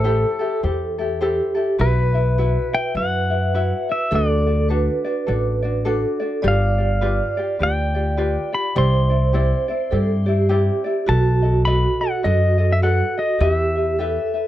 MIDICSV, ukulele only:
0, 0, Header, 1, 2, 480
1, 0, Start_track
1, 0, Tempo, 580271
1, 1483, Time_signature, 4, 2, 24, 8
1, 11974, End_track
2, 0, Start_track
2, 0, Title_t, "Ukulele"
2, 0, Program_c, 0, 24
2, 33, Note_on_c, 0, 72, 76
2, 36, Note_on_c, 0, 67, 81
2, 39, Note_on_c, 0, 64, 96
2, 42, Note_on_c, 0, 69, 84
2, 312, Note_off_c, 0, 69, 0
2, 319, Note_off_c, 0, 72, 0
2, 322, Note_on_c, 0, 69, 58
2, 323, Note_off_c, 0, 64, 0
2, 325, Note_off_c, 0, 67, 0
2, 333, Note_on_c, 0, 64, 54
2, 335, Note_on_c, 0, 67, 55
2, 516, Note_off_c, 0, 67, 0
2, 517, Note_off_c, 0, 69, 0
2, 519, Note_off_c, 0, 64, 0
2, 520, Note_on_c, 0, 72, 60
2, 526, Note_on_c, 0, 67, 61
2, 528, Note_on_c, 0, 64, 60
2, 538, Note_on_c, 0, 69, 67
2, 804, Note_off_c, 0, 69, 0
2, 808, Note_off_c, 0, 64, 0
2, 809, Note_off_c, 0, 72, 0
2, 812, Note_off_c, 0, 67, 0
2, 814, Note_on_c, 0, 69, 60
2, 818, Note_on_c, 0, 64, 55
2, 830, Note_on_c, 0, 67, 47
2, 994, Note_off_c, 0, 67, 0
2, 995, Note_off_c, 0, 69, 0
2, 998, Note_on_c, 0, 72, 80
2, 1000, Note_off_c, 0, 64, 0
2, 1004, Note_on_c, 0, 67, 92
2, 1010, Note_on_c, 0, 64, 93
2, 1011, Note_on_c, 0, 69, 91
2, 1269, Note_off_c, 0, 69, 0
2, 1276, Note_off_c, 0, 72, 0
2, 1279, Note_off_c, 0, 64, 0
2, 1279, Note_on_c, 0, 69, 63
2, 1287, Note_off_c, 0, 67, 0
2, 1288, Note_on_c, 0, 64, 57
2, 1297, Note_on_c, 0, 67, 52
2, 1472, Note_off_c, 0, 67, 0
2, 1474, Note_off_c, 0, 64, 0
2, 1476, Note_on_c, 0, 71, 73
2, 1477, Note_off_c, 0, 69, 0
2, 1482, Note_on_c, 0, 66, 88
2, 1484, Note_on_c, 0, 64, 83
2, 1489, Note_on_c, 0, 76, 84
2, 1762, Note_off_c, 0, 76, 0
2, 1767, Note_off_c, 0, 64, 0
2, 1767, Note_off_c, 0, 71, 0
2, 1770, Note_off_c, 0, 66, 0
2, 1771, Note_on_c, 0, 76, 49
2, 1777, Note_on_c, 0, 64, 49
2, 1787, Note_on_c, 0, 66, 42
2, 1962, Note_off_c, 0, 66, 0
2, 1963, Note_off_c, 0, 76, 0
2, 1966, Note_off_c, 0, 64, 0
2, 1968, Note_on_c, 0, 71, 82
2, 1972, Note_on_c, 0, 66, 82
2, 1976, Note_on_c, 0, 64, 85
2, 1981, Note_on_c, 0, 76, 81
2, 2250, Note_off_c, 0, 76, 0
2, 2253, Note_off_c, 0, 71, 0
2, 2255, Note_off_c, 0, 66, 0
2, 2257, Note_off_c, 0, 64, 0
2, 2260, Note_on_c, 0, 76, 57
2, 2269, Note_on_c, 0, 64, 50
2, 2274, Note_on_c, 0, 66, 44
2, 2445, Note_off_c, 0, 66, 0
2, 2447, Note_off_c, 0, 76, 0
2, 2448, Note_off_c, 0, 64, 0
2, 2449, Note_on_c, 0, 71, 51
2, 2455, Note_on_c, 0, 66, 65
2, 2458, Note_on_c, 0, 64, 62
2, 2468, Note_on_c, 0, 76, 65
2, 2719, Note_off_c, 0, 76, 0
2, 2729, Note_on_c, 0, 76, 45
2, 2731, Note_off_c, 0, 64, 0
2, 2733, Note_off_c, 0, 71, 0
2, 2736, Note_off_c, 0, 66, 0
2, 2740, Note_on_c, 0, 64, 53
2, 2746, Note_on_c, 0, 66, 43
2, 2922, Note_off_c, 0, 66, 0
2, 2922, Note_off_c, 0, 76, 0
2, 2925, Note_off_c, 0, 64, 0
2, 2929, Note_on_c, 0, 71, 74
2, 2932, Note_on_c, 0, 66, 80
2, 2934, Note_on_c, 0, 64, 85
2, 2940, Note_on_c, 0, 76, 91
2, 3209, Note_off_c, 0, 76, 0
2, 3213, Note_off_c, 0, 71, 0
2, 3215, Note_off_c, 0, 66, 0
2, 3216, Note_off_c, 0, 64, 0
2, 3219, Note_on_c, 0, 76, 50
2, 3231, Note_on_c, 0, 64, 47
2, 3236, Note_on_c, 0, 66, 48
2, 3407, Note_off_c, 0, 76, 0
2, 3410, Note_off_c, 0, 66, 0
2, 3411, Note_on_c, 0, 69, 73
2, 3413, Note_off_c, 0, 64, 0
2, 3414, Note_on_c, 0, 62, 81
2, 3419, Note_on_c, 0, 66, 89
2, 3426, Note_on_c, 0, 74, 90
2, 3684, Note_off_c, 0, 74, 0
2, 3689, Note_off_c, 0, 66, 0
2, 3690, Note_off_c, 0, 69, 0
2, 3694, Note_on_c, 0, 74, 53
2, 3696, Note_off_c, 0, 62, 0
2, 3699, Note_on_c, 0, 66, 47
2, 3712, Note_on_c, 0, 62, 44
2, 3880, Note_off_c, 0, 62, 0
2, 3882, Note_off_c, 0, 66, 0
2, 3884, Note_off_c, 0, 74, 0
2, 3885, Note_on_c, 0, 69, 72
2, 3890, Note_on_c, 0, 62, 79
2, 3892, Note_on_c, 0, 66, 90
2, 3894, Note_on_c, 0, 74, 84
2, 4163, Note_off_c, 0, 74, 0
2, 4171, Note_off_c, 0, 69, 0
2, 4172, Note_off_c, 0, 66, 0
2, 4173, Note_on_c, 0, 74, 63
2, 4174, Note_off_c, 0, 62, 0
2, 4182, Note_on_c, 0, 66, 53
2, 4187, Note_on_c, 0, 62, 44
2, 4352, Note_off_c, 0, 62, 0
2, 4355, Note_on_c, 0, 69, 65
2, 4357, Note_off_c, 0, 66, 0
2, 4362, Note_on_c, 0, 62, 64
2, 4364, Note_off_c, 0, 74, 0
2, 4367, Note_on_c, 0, 66, 69
2, 4373, Note_on_c, 0, 74, 70
2, 4643, Note_off_c, 0, 74, 0
2, 4646, Note_off_c, 0, 69, 0
2, 4650, Note_off_c, 0, 62, 0
2, 4652, Note_off_c, 0, 66, 0
2, 4653, Note_on_c, 0, 74, 57
2, 4667, Note_on_c, 0, 66, 53
2, 4671, Note_on_c, 0, 62, 48
2, 4833, Note_off_c, 0, 62, 0
2, 4836, Note_off_c, 0, 66, 0
2, 4839, Note_on_c, 0, 69, 86
2, 4841, Note_off_c, 0, 74, 0
2, 4843, Note_on_c, 0, 62, 86
2, 4846, Note_on_c, 0, 66, 97
2, 4851, Note_on_c, 0, 74, 92
2, 5116, Note_off_c, 0, 74, 0
2, 5126, Note_on_c, 0, 74, 60
2, 5127, Note_off_c, 0, 66, 0
2, 5128, Note_off_c, 0, 69, 0
2, 5131, Note_off_c, 0, 62, 0
2, 5137, Note_on_c, 0, 66, 49
2, 5145, Note_on_c, 0, 62, 46
2, 5313, Note_off_c, 0, 62, 0
2, 5315, Note_off_c, 0, 74, 0
2, 5316, Note_on_c, 0, 65, 76
2, 5316, Note_on_c, 0, 71, 75
2, 5319, Note_off_c, 0, 66, 0
2, 5322, Note_on_c, 0, 67, 84
2, 5325, Note_on_c, 0, 74, 83
2, 5598, Note_off_c, 0, 74, 0
2, 5607, Note_off_c, 0, 65, 0
2, 5607, Note_off_c, 0, 71, 0
2, 5608, Note_on_c, 0, 74, 53
2, 5610, Note_off_c, 0, 67, 0
2, 5619, Note_on_c, 0, 67, 45
2, 5628, Note_on_c, 0, 65, 39
2, 5796, Note_off_c, 0, 67, 0
2, 5797, Note_off_c, 0, 65, 0
2, 5799, Note_off_c, 0, 74, 0
2, 5799, Note_on_c, 0, 71, 73
2, 5806, Note_on_c, 0, 67, 80
2, 5807, Note_on_c, 0, 65, 90
2, 5809, Note_on_c, 0, 74, 84
2, 6087, Note_off_c, 0, 74, 0
2, 6089, Note_off_c, 0, 71, 0
2, 6092, Note_off_c, 0, 65, 0
2, 6092, Note_off_c, 0, 67, 0
2, 6097, Note_on_c, 0, 74, 65
2, 6106, Note_on_c, 0, 67, 56
2, 6113, Note_on_c, 0, 65, 49
2, 6277, Note_off_c, 0, 67, 0
2, 6278, Note_off_c, 0, 65, 0
2, 6280, Note_on_c, 0, 71, 57
2, 6286, Note_off_c, 0, 74, 0
2, 6288, Note_on_c, 0, 65, 56
2, 6291, Note_on_c, 0, 67, 59
2, 6298, Note_on_c, 0, 74, 55
2, 6562, Note_off_c, 0, 74, 0
2, 6567, Note_off_c, 0, 67, 0
2, 6569, Note_off_c, 0, 71, 0
2, 6572, Note_on_c, 0, 74, 47
2, 6573, Note_off_c, 0, 65, 0
2, 6577, Note_on_c, 0, 67, 49
2, 6585, Note_on_c, 0, 65, 47
2, 6756, Note_off_c, 0, 65, 0
2, 6758, Note_off_c, 0, 67, 0
2, 6761, Note_off_c, 0, 74, 0
2, 6761, Note_on_c, 0, 71, 78
2, 6766, Note_on_c, 0, 65, 81
2, 6769, Note_on_c, 0, 67, 86
2, 6771, Note_on_c, 0, 74, 84
2, 7041, Note_off_c, 0, 74, 0
2, 7050, Note_off_c, 0, 71, 0
2, 7051, Note_on_c, 0, 74, 50
2, 7052, Note_off_c, 0, 67, 0
2, 7053, Note_off_c, 0, 65, 0
2, 7062, Note_on_c, 0, 67, 46
2, 7071, Note_on_c, 0, 65, 44
2, 7232, Note_off_c, 0, 67, 0
2, 7241, Note_off_c, 0, 74, 0
2, 7242, Note_off_c, 0, 65, 0
2, 7242, Note_on_c, 0, 67, 76
2, 7245, Note_on_c, 0, 60, 83
2, 7246, Note_on_c, 0, 64, 88
2, 7251, Note_on_c, 0, 74, 83
2, 7514, Note_off_c, 0, 74, 0
2, 7522, Note_off_c, 0, 64, 0
2, 7524, Note_on_c, 0, 74, 53
2, 7529, Note_off_c, 0, 60, 0
2, 7531, Note_off_c, 0, 67, 0
2, 7532, Note_on_c, 0, 64, 50
2, 7538, Note_on_c, 0, 60, 44
2, 7715, Note_off_c, 0, 64, 0
2, 7716, Note_off_c, 0, 60, 0
2, 7717, Note_on_c, 0, 67, 74
2, 7720, Note_off_c, 0, 74, 0
2, 7725, Note_on_c, 0, 64, 87
2, 7726, Note_on_c, 0, 60, 77
2, 7733, Note_on_c, 0, 74, 91
2, 7998, Note_off_c, 0, 74, 0
2, 8007, Note_off_c, 0, 64, 0
2, 8008, Note_off_c, 0, 67, 0
2, 8008, Note_on_c, 0, 74, 58
2, 8013, Note_off_c, 0, 60, 0
2, 8017, Note_on_c, 0, 64, 59
2, 8028, Note_on_c, 0, 60, 48
2, 8200, Note_off_c, 0, 60, 0
2, 8201, Note_on_c, 0, 67, 65
2, 8202, Note_off_c, 0, 74, 0
2, 8203, Note_off_c, 0, 64, 0
2, 8210, Note_on_c, 0, 60, 58
2, 8213, Note_on_c, 0, 64, 68
2, 8221, Note_on_c, 0, 74, 66
2, 8480, Note_off_c, 0, 74, 0
2, 8489, Note_on_c, 0, 74, 54
2, 8490, Note_off_c, 0, 67, 0
2, 8493, Note_off_c, 0, 64, 0
2, 8495, Note_off_c, 0, 60, 0
2, 8503, Note_on_c, 0, 64, 58
2, 8511, Note_on_c, 0, 60, 51
2, 8670, Note_off_c, 0, 60, 0
2, 8677, Note_off_c, 0, 64, 0
2, 8678, Note_on_c, 0, 67, 89
2, 8680, Note_on_c, 0, 60, 95
2, 8681, Note_off_c, 0, 74, 0
2, 8687, Note_on_c, 0, 64, 92
2, 8691, Note_on_c, 0, 74, 92
2, 8959, Note_off_c, 0, 74, 0
2, 8969, Note_off_c, 0, 67, 0
2, 8969, Note_on_c, 0, 74, 56
2, 8970, Note_off_c, 0, 60, 0
2, 8971, Note_off_c, 0, 64, 0
2, 8981, Note_on_c, 0, 64, 50
2, 8987, Note_on_c, 0, 60, 47
2, 9157, Note_on_c, 0, 71, 82
2, 9158, Note_off_c, 0, 60, 0
2, 9161, Note_off_c, 0, 64, 0
2, 9161, Note_on_c, 0, 66, 81
2, 9163, Note_off_c, 0, 74, 0
2, 9164, Note_on_c, 0, 69, 87
2, 9168, Note_on_c, 0, 75, 86
2, 9440, Note_off_c, 0, 75, 0
2, 9449, Note_off_c, 0, 69, 0
2, 9449, Note_off_c, 0, 71, 0
2, 9450, Note_on_c, 0, 75, 48
2, 9451, Note_off_c, 0, 66, 0
2, 9459, Note_on_c, 0, 69, 44
2, 9468, Note_on_c, 0, 66, 44
2, 9639, Note_off_c, 0, 66, 0
2, 9643, Note_off_c, 0, 69, 0
2, 9644, Note_off_c, 0, 75, 0
2, 9644, Note_on_c, 0, 71, 79
2, 9649, Note_on_c, 0, 66, 77
2, 9653, Note_on_c, 0, 69, 76
2, 9656, Note_on_c, 0, 75, 99
2, 9924, Note_off_c, 0, 75, 0
2, 9933, Note_off_c, 0, 71, 0
2, 9934, Note_off_c, 0, 69, 0
2, 9934, Note_on_c, 0, 75, 51
2, 9935, Note_off_c, 0, 66, 0
2, 9944, Note_on_c, 0, 69, 54
2, 9950, Note_on_c, 0, 66, 46
2, 10110, Note_off_c, 0, 66, 0
2, 10115, Note_on_c, 0, 71, 56
2, 10118, Note_off_c, 0, 69, 0
2, 10120, Note_on_c, 0, 66, 57
2, 10122, Note_off_c, 0, 75, 0
2, 10128, Note_on_c, 0, 69, 61
2, 10132, Note_on_c, 0, 75, 57
2, 10396, Note_off_c, 0, 75, 0
2, 10406, Note_on_c, 0, 75, 55
2, 10408, Note_off_c, 0, 71, 0
2, 10409, Note_off_c, 0, 69, 0
2, 10411, Note_off_c, 0, 66, 0
2, 10419, Note_on_c, 0, 69, 44
2, 10425, Note_on_c, 0, 66, 44
2, 10602, Note_off_c, 0, 66, 0
2, 10602, Note_off_c, 0, 75, 0
2, 10605, Note_off_c, 0, 69, 0
2, 10606, Note_on_c, 0, 71, 80
2, 10612, Note_on_c, 0, 66, 79
2, 10615, Note_on_c, 0, 69, 82
2, 10619, Note_on_c, 0, 75, 89
2, 10888, Note_off_c, 0, 75, 0
2, 10894, Note_off_c, 0, 69, 0
2, 10894, Note_off_c, 0, 71, 0
2, 10897, Note_off_c, 0, 66, 0
2, 10898, Note_on_c, 0, 75, 54
2, 10904, Note_on_c, 0, 69, 44
2, 10914, Note_on_c, 0, 66, 44
2, 11089, Note_off_c, 0, 75, 0
2, 11092, Note_off_c, 0, 69, 0
2, 11093, Note_off_c, 0, 66, 0
2, 11094, Note_on_c, 0, 67, 76
2, 11096, Note_on_c, 0, 64, 72
2, 11102, Note_on_c, 0, 71, 75
2, 11102, Note_on_c, 0, 76, 86
2, 11370, Note_off_c, 0, 76, 0
2, 11377, Note_off_c, 0, 71, 0
2, 11379, Note_off_c, 0, 67, 0
2, 11380, Note_off_c, 0, 64, 0
2, 11380, Note_on_c, 0, 76, 49
2, 11387, Note_on_c, 0, 71, 44
2, 11397, Note_on_c, 0, 64, 38
2, 11569, Note_off_c, 0, 64, 0
2, 11570, Note_off_c, 0, 76, 0
2, 11571, Note_on_c, 0, 67, 79
2, 11572, Note_off_c, 0, 71, 0
2, 11579, Note_on_c, 0, 64, 83
2, 11582, Note_on_c, 0, 71, 77
2, 11585, Note_on_c, 0, 76, 82
2, 11850, Note_off_c, 0, 76, 0
2, 11857, Note_off_c, 0, 67, 0
2, 11857, Note_off_c, 0, 71, 0
2, 11860, Note_on_c, 0, 76, 55
2, 11861, Note_off_c, 0, 64, 0
2, 11867, Note_on_c, 0, 71, 52
2, 11873, Note_on_c, 0, 64, 42
2, 11974, Note_off_c, 0, 64, 0
2, 11974, Note_off_c, 0, 71, 0
2, 11974, Note_off_c, 0, 76, 0
2, 11974, End_track
0, 0, End_of_file